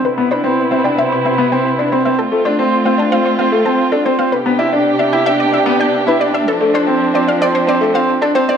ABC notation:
X:1
M:4/4
L:1/16
Q:1/4=112
K:C
V:1 name="Synth arpeggio sound"
B z c z2 e g e c e z g z B c e | A z c z2 f a f c f z a z A c f | B z d z2 e g e d e z g z B d e | A z c z2 d f d c d z f z A c d |]
V:2 name="Grand piano"
z B, D C2 C D C2 C B, C2 D C C | z A, D C2 C D C2 C A, C2 D C C | z B, E D2 D E D2 D B, D2 E D D | z A, D C2 C D C2 C A, C2 D C C |]
V:3 name="String section"
[C,B,E]16 | [A,CF]16 | [C,B,DG]16 | [F,C]16 |]
V:4 name="Sub bass" clef=bass
C,,16 | C,,16 | C,,16 | z16 |]